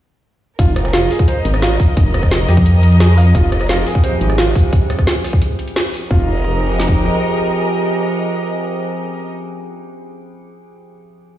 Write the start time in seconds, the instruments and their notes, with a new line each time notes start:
0.59 wobble bass F1, felt piano F4, string section A#4, kick, closed hi-hat
0.76 cross-stick, closed hi-hat
0.85 string section D#5, cross-stick, closed hi-hat
0.93 felt piano F4, snare, closed hi-hat
1.02 closed hi-hat
1.11 felt piano G#4, open hi-hat
1.19 kick, closed hi-hat
1.28 felt piano C5, closed hi-hat
1.45 wobble bass G#1, closed hi-hat
1.54 cross-stick, closed hi-hat
1.62 felt piano F4, snare, closed hi-hat
1.80 kick, open hi-hat
1.97 wobble bass F1, kick, closed hi-hat
2.14 cross-stick, closed hi-hat
2.23 kick, cross-stick, closed hi-hat
2.31 snare, closed hi-hat
2.40 closed hi-hat
2.49 wobble bass F2, felt piano G4, cross-stick, open hi-hat
2.57 kick, closed hi-hat
2.66 closed hi-hat
2.83 closed hi-hat
2.92 closed hi-hat
3.00 felt piano G#4, snare, closed hi-hat
3.18 felt piano F5, open hi-hat
3.35 wobble bass F1, synth drone F3 C4 G4 G#4, felt piano F4, kick, closed hi-hat
3.52 cross-stick, closed hi-hat
3.61 cross-stick, closed hi-hat
3.69 felt piano F4, snare, closed hi-hat
3.78 closed hi-hat
3.86 felt piano G#4, open hi-hat
3.95 kick, closed hi-hat
4.04 felt piano C5, closed hi-hat
4.21 wobble bass G#1, closed hi-hat
4.30 cross-stick, closed hi-hat
4.38 felt piano F4, snare, closed hi-hat
4.55 kick, open hi-hat
4.73 kick, closed hi-hat
4.90 cross-stick, closed hi-hat
4.99 kick, cross-stick, closed hi-hat
5.07 snare, closed hi-hat
5.16 closed hi-hat
5.24 cross-stick, open hi-hat
5.33 kick, closed hi-hat
5.42 closed hi-hat
5.59 closed hi-hat
5.68 closed hi-hat
5.76 snare, closed hi-hat
5.93 open hi-hat
6.11 wobble bass F1, synth drone F3 C4 G4 G#4, felt piano F4, string section A#4, kick
6.16 string section D#5
6.80 snare
6.88 kick